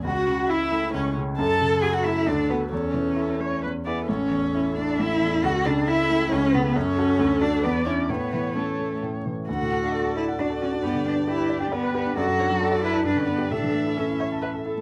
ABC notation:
X:1
M:3/4
L:1/16
Q:1/4=134
K:A
V:1 name="Violin"
f4 e4 c2 z2 | a4 g f e2 d2 B2 | c8 z2 B2 | c6 d2 e4 |
f2 d2 e4 c2 B2 | c6 d2 B2 c2 | B4 A4 z4 | [K:D] f4 d8- |
d12 | d2 c2 d4 d4 | e8- e2 z2 |]
V:2 name="Viola"
F4 E4 C2 z2 | A8 A4 | A4 A2 c2 B2 d2 | A12- |
A12 | A8 d4 | c8- c2 z2 | [K:D] A8 F4 |
G4 G4 B4 | A4 A2 B2 B4 | A4 A2 c2 B2 A2 |]
V:3 name="Cello"
F4 E4 C2 z2 | A4 G F E2 D2 B,2 | C8 z2 B,2 | C6 D2 E4 |
F2 D2 E4 C2 B,2 | C6 D2 B,2 C2 | B,4 A,4 z4 | [K:D] F6 E2 D2 C2 |
B,2 D2 E3 D B,2 B,2 | F6 E2 D C B,2 | D4 C4 z4 |]
V:4 name="Grand piano"
C,,2 C,2 E2 A,2 C,,2 C,2 | F,,2 C,2 F2 A,2 D,,2 [FA]2 | E,,2 E,2 E2 A,2 E,,2 [EG]2 | A,,,2 E,,2 E2 A,2 A,,,2 E,,2 |
C,,2 C,2 E2 A,2 C,,2 C,2 | F,,2 [FA]2 D,,2 [FA]2 E,,2 [DE]2 | A,,2 E,2 C2 A,2 A,,2 E,2 | [K:D] D,, A,, A, D F A d f d A F D |
G,, D, B, D G B d g d B G D | F,, F, D F, A d A a G,, D, D G | A,, E, A, E A E e a e A E A, |]